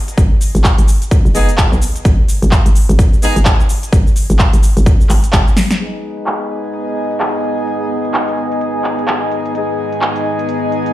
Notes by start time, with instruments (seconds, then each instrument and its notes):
0.08 closed hi-hat, cabasa
0.18 fm bass G#1, kick, closed hi-hat, cabasa
0.41 open hi-hat, cabasa
0.55 fm bass G#1, closed hi-hat, cabasa
0.64 kick, clap, cabasa
0.78 fm bass G#1, closed hi-hat, cabasa
0.88 open hi-hat, cabasa
1.02 closed hi-hat, cabasa
1.11 kick, closed hi-hat, cabasa
1.25 fm bass F#1, cabasa
1.35 horn section G#3 B3 D#4 G#4, open hi-hat, cabasa
1.49 closed hi-hat, cabasa
1.58 kick, clap, closed hi-hat, cabasa
1.72 fm bass B1, cabasa
1.82 open hi-hat, cabasa
1.96 closed hi-hat, cabasa
2.05 fm bass G#1, kick, closed hi-hat, cabasa
2.29 open hi-hat, cabasa
2.42 fm bass G#1, closed hi-hat, cabasa
2.51 kick, clap, cabasa
2.66 fm bass G#1, closed hi-hat, cabasa
2.75 open hi-hat, cabasa
2.89 fm bass G#1, closed hi-hat, cabasa
2.99 kick, closed hi-hat, cabasa
3.13 cabasa
3.22 horn section G#3 B3 D#4 G#4, open hi-hat, cabasa
3.36 fm bass G#1, closed hi-hat, cabasa
3.45 kick, clap, closed hi-hat, cabasa
3.60 cabasa
3.69 open hi-hat, cabasa
3.83 closed hi-hat, cabasa
3.93 fm bass G#1, kick, closed hi-hat, cabasa
4.07 cabasa
4.16 open hi-hat, cabasa
4.30 fm bass G#1, closed hi-hat, cabasa
4.39 kick, clap, cabasa
4.53 fm bass G#1, closed hi-hat, cabasa
4.63 open hi-hat, cabasa
4.77 fm bass G#1, closed hi-hat, cabasa
4.86 kick, closed hi-hat, cabasa
5.01 cabasa
5.09 fm bass G#1, clap, open hi-hat, cabasa
5.24 closed hi-hat, cabasa
5.33 fm bass G#1, kick, clap, closed hi-hat, cabasa
5.48 cabasa
5.57 snare, open hi-hat, cabasa
5.71 snare, closed hi-hat, cabasa
5.80 ambient pad G#3 D#4 B4 D#5, horn section G#3 B3 D#4 G#4, analog synth pad B3, closed hi-hat
6.17 analog synth pad G#4, closed hi-hat
6.26 clap
6.41 analog synth pad D#5 G#5, closed hi-hat
6.64 closed hi-hat
6.74 closed hi-hat
6.97 closed hi-hat
7.11 closed hi-hat
7.20 clap, closed hi-hat
7.44 closed hi-hat
7.58 closed hi-hat
7.67 closed hi-hat
8.05 closed hi-hat
8.14 clap
8.28 closed hi-hat
8.38 closed hi-hat
8.52 closed hi-hat
8.61 closed hi-hat
8.84 clap, closed hi-hat
8.99 closed hi-hat
9.08 clap, closed hi-hat
9.32 closed hi-hat
9.46 closed hi-hat
9.55 horn section G#3 B3 D#4 G#4, closed hi-hat
9.93 closed hi-hat
10.01 clap
10.16 closed hi-hat
10.39 closed hi-hat
10.49 closed hi-hat
10.72 closed hi-hat
10.86 closed hi-hat